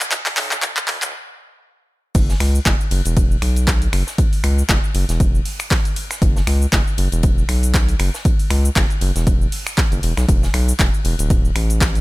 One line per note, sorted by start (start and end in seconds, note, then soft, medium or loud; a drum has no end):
0.01 clap medium
0.01 shaker medium
0.12 kick loud
0.12 clap loud
0.12 closed hi-hat medium
0.12 shaker medium
0.26 clap medium
0.26 open hi-hat medium
0.26 shaker soft
0.37 0.56 B1 loud
0.37 clap loud
0.37 open hi-hat loud
0.51 clap medium
0.51 shaker medium
0.62 0.73 E1 medium
0.62 kick loud
0.62 clap loud
0.62 closed hi-hat medium
0.62 shaker medium
0.77 clap medium
0.77 closed hi-hat soft
0.77 shaker soft
0.88 0.98 E1 loud
0.88 clap loud
0.88 open hi-hat loud
1.02 1.13 D1 loud
1.02 clap medium
1.02 closed hi-hat medium
1.02 shaker medium
2.15 2.34 F#1 loud
2.15 kick loud
2.15 closed hi-hat medium
2.15 crash loud
2.15 ride medium
2.15 shaker medium
2.30 snare medium
2.30 shaker soft
2.40 2.60 C#2 loud
2.40 finger snap medium
2.40 snare soft
2.40 open hi-hat loud
2.40 ride medium
2.55 shaker medium
2.66 2.76 F#1 loud
2.66 kick loud
2.66 snare loud
2.66 clap loud
2.66 closed hi-hat medium
2.66 ride medium
2.66 shaker medium
2.81 shaker soft
2.91 3.02 F#1 loud
2.91 open hi-hat loud
2.91 ride medium
3.05 3.37 E1 loud
3.05 closed hi-hat medium
3.05 ride soft
3.05 shaker medium
3.17 kick loud
3.17 closed hi-hat medium
3.17 ride medium
3.17 shaker medium
3.31 shaker soft
3.42 3.88 B1 medium
3.42 finger snap medium
3.42 open hi-hat loud
3.42 ride medium
3.56 closed hi-hat soft
3.56 shaker medium
3.67 kick loud
3.67 snare loud
3.67 clap loud
3.67 closed hi-hat medium
3.67 ride medium
3.67 shaker medium
3.82 closed hi-hat medium
3.82 shaker soft
3.93 4.03 F#1 medium
3.93 finger snap medium
3.93 open hi-hat loud
3.93 ride medium
4.07 snare soft
4.07 shaker medium
4.18 kick loud
4.18 closed hi-hat medium
4.18 ride medium
4.18 shaker medium
4.33 open hi-hat medium
4.33 shaker soft
4.44 4.63 C#2 loud
4.44 finger snap medium
4.44 open hi-hat loud
4.44 ride medium
4.59 shaker medium
4.69 4.79 F#1 medium
4.69 kick loud
4.69 snare loud
4.69 clap loud
4.69 closed hi-hat medium
4.69 shaker medium
4.84 shaker soft
4.94 5.05 F#1 loud
4.94 open hi-hat loud
4.94 ride medium
5.09 5.40 E1 medium
5.09 snare soft
5.09 closed hi-hat medium
5.09 shaker medium
5.20 kick loud
5.20 closed hi-hat medium
5.20 ride medium
5.20 shaker medium
5.35 shaker soft
5.45 open hi-hat loud
5.45 open hi-hat medium
5.59 finger snap medium
5.59 closed hi-hat soft
5.59 ride soft
5.59 shaker medium
5.71 kick loud
5.71 snare loud
5.71 clap loud
5.71 closed hi-hat medium
5.71 ride medium
5.71 shaker medium
5.85 closed hi-hat medium
5.85 shaker soft
5.96 open hi-hat loud
5.96 ride medium
6.11 finger snap medium
6.11 snare soft
6.11 shaker medium
6.22 6.41 F#1 loud
6.22 kick loud
6.22 closed hi-hat medium
6.22 ride medium
6.22 shaker medium
6.36 snare medium
6.36 shaker soft
6.47 6.66 C#2 loud
6.47 finger snap medium
6.47 snare soft
6.47 open hi-hat loud
6.47 ride medium
6.62 shaker medium
6.73 6.83 F#1 medium
6.73 kick loud
6.73 snare loud
6.73 clap loud
6.73 closed hi-hat medium
6.73 ride medium
6.73 shaker medium
6.87 shaker soft
6.98 7.08 F#1 loud
6.98 open hi-hat loud
6.98 ride medium
7.12 7.44 E1 loud
7.12 closed hi-hat soft
7.12 ride soft
7.12 shaker medium
7.23 kick loud
7.23 closed hi-hat medium
7.23 ride medium
7.23 shaker medium
7.38 shaker soft
7.49 7.95 B1 medium
7.49 finger snap medium
7.49 open hi-hat loud
7.49 ride medium
7.63 closed hi-hat soft
7.63 shaker medium
7.74 kick loud
7.74 snare loud
7.74 clap loud
7.74 closed hi-hat medium
7.74 ride medium
7.74 shaker medium
7.89 closed hi-hat medium
7.89 shaker soft
7.99 8.10 F#1 loud
7.99 finger snap medium
7.99 open hi-hat loud
7.99 ride medium
8.14 snare medium
8.14 shaker medium
8.25 kick loud
8.25 closed hi-hat medium
8.25 ride medium
8.25 shaker medium
8.39 open hi-hat medium
8.39 shaker soft
8.51 8.70 C#2 loud
8.51 finger snap medium
8.51 open hi-hat loud
8.51 ride medium
8.65 shaker medium
8.76 8.86 F#1 medium
8.76 kick loud
8.76 snare loud
8.76 clap loud
8.76 closed hi-hat medium
8.76 ride medium
8.76 shaker medium
8.90 closed hi-hat soft
8.90 shaker soft
9.01 9.12 F#1 loud
9.01 open hi-hat loud
9.01 ride medium
9.16 9.47 E1 loud
9.16 snare soft
9.16 closed hi-hat soft
9.16 shaker medium
9.27 kick loud
9.27 closed hi-hat medium
9.27 ride medium
9.27 shaker medium
9.42 shaker soft
9.52 open hi-hat loud
9.52 open hi-hat medium
9.67 finger snap medium
9.67 closed hi-hat soft
9.67 ride soft
9.67 shaker medium
9.77 kick loud
9.77 snare loud
9.77 clap loud
9.77 closed hi-hat medium
9.77 ride medium
9.77 shaker medium
9.92 10.00 F#1 loud
9.92 closed hi-hat soft
9.92 shaker soft
10.03 10.13 E1 medium
10.03 open hi-hat loud
10.03 ride medium
10.17 10.25 B1 loud
10.17 finger snap medium
10.17 snare soft
10.17 shaker medium
10.29 10.48 E1 loud
10.29 kick loud
10.29 closed hi-hat medium
10.29 ride medium
10.29 shaker medium
10.43 snare medium
10.43 shaker soft
10.54 10.73 B1 loud
10.54 finger snap medium
10.54 snare soft
10.54 open hi-hat loud
10.54 ride medium
10.69 shaker medium
10.79 10.90 E1 medium
10.79 kick loud
10.79 snare loud
10.79 clap loud
10.79 closed hi-hat medium
10.79 ride medium
10.79 shaker medium
10.94 shaker soft
11.05 11.15 E1 loud
11.05 open hi-hat loud
11.05 ride medium
11.19 11.51 D1 loud
11.19 closed hi-hat soft
11.19 ride soft
11.19 shaker medium
11.30 kick loud
11.30 closed hi-hat medium
11.30 ride medium
11.30 shaker medium
11.45 shaker soft
11.56 12.01 A1 medium
11.56 finger snap medium
11.56 open hi-hat loud
11.56 ride medium
11.70 closed hi-hat soft
11.70 shaker medium
11.81 kick loud
11.81 snare loud
11.81 clap loud
11.81 closed hi-hat medium
11.81 ride medium
11.81 shaker medium
11.95 closed hi-hat soft
11.95 shaker soft